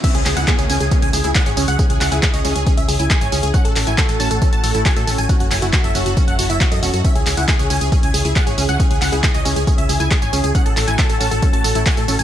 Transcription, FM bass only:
X:1
M:4/4
L:1/16
Q:1/4=137
K:C#m
V:1 name="FM bass" clef=bass
z C,, C,, C,, z C,, C,, C,, z C,, C,, C,, z G,,, C,, C,, | z C,, C,, C,, z C,, C,, C,, z C,, C,, C,, z G,,, C,, C,, | z A,,, A,,, A,,, z A,,, A,,, A,,, z A,,, A,,, A,,, z A,, A,,, A,,, | z F,,, F,,, F,,, z F,,, F,,, F,,, z F,,, F,,, F,,, z F,, E,,, F,, |
z C,, C,, C,, z C,, C,, C,, z C,, C,, C,, z G,,, C,, C,, | z C,, C,, C,, z C,, C,, C,, z C,, C,, C,, z G,,, C,, C,, | z A,,, A,,, A,,, z A,,, A,,, A,,, z A,,, A,,, A,,, z A,, A,,, A,,, |]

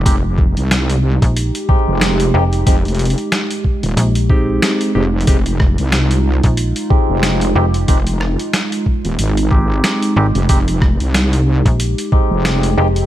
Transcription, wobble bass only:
X:1
M:4/4
L:1/16
Q:"Swing 16ths" 1/4=92
K:Fm
V:1 name="Wobble bass" clef=bass
F,,,3 C,,4 z4 F,,,3 z2 | F,,,3 z4 E,,, z6 F,,,2 | F,,,3 C,,4 z4 F,,,3 z2 | F,,,3 z4 E,,, A,,,4 z3 F,,, |
F,,,3 C,,4 z4 F,,,3 z2 |]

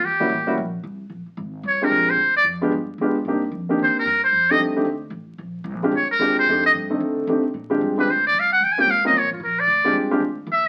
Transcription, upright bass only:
X:1
M:4/4
L:1/8
Q:"Swing" 1/4=224
K:Bbmix
V:1 name="Upright bass" clef=bass
=E,,2 =A,,,2 B,,,2 C,,2 | B,,, z A,,,2 C,,2 B,,,2 | D,,2 F,,2 G,,2 A,,2 | G,,2 F,,2 E,, z G,,2 |
F,,2 C,,2 D,,2 =A,,,2 | B,,,2 (3C,, B,,, A,,, D,, z E,,2 | F,,2 G,,2 D,2 C,2 | B,,2 G,,2 D,,2 C,,2 |
E,, z _D,,2 (3C,, B,,, G,,, B,,,2 | D,,2 C,,2 D,,2 E,,2 |]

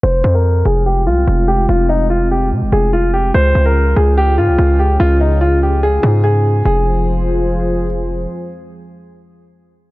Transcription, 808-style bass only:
X:1
M:4/4
L:1/16
Q:1/4=145
K:Fm
V:1 name="808-style bass" clef=bass
F,,,2 F,,4 F,,,4 C,,2 F,,,4 | F,,,8 C, F,,, F,,,6 | D,,2 D,,4 D,,4 A,, D,, D,,4 | D,,8- D,,2 A,,6 |
F,,,16 | z16 |]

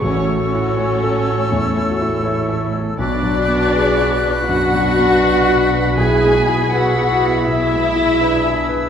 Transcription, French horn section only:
X:1
M:4/4
L:1/8
Q:1/4=81
K:A
V:1 name="French horn section"
F4 E F E2 | D F G F D4 | E F G E3 D2 |]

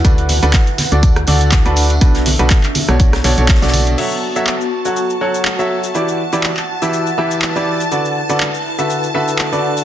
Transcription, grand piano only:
X:1
M:4/4
L:1/16
Q:"Swing 16ths" 1/4=122
K:F#phr
V:1 name="Grand piano"
[D,DFAB]2 z [D,DFAB] z3 [D,DFAd]2 z [D,DFAd]3 [D,DFAB]2 z | [B,,DFAB]2 z [B,,DFAB] z3 [B,,DFAc]2 z [B,,DFAc] [B,,DFAc]2 [B,,DFAd]3 | [F,FAce]2 z [F,FAce] z3 [F,FAcf]2 z [F,FAcf]3 [F,FAce]2 z | [E,EGBd]2 z [E,EGBd] z3 [E,EGBe]2 z [E,EGBe]3 [E,EGBd]2 z |
[D,FABd]2 z [D,FABd] z3 [D,FABe]2 z [D,FABe]3 [D,FABd]2 z |]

